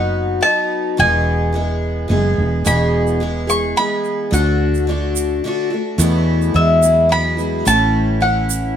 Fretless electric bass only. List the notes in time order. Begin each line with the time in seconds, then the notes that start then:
Already playing: F#1
0.99 E1
2.10 F#1
2.38 E1
2.66 E1
4.32 D2
5.98 E2
6.55 E2
7.67 A1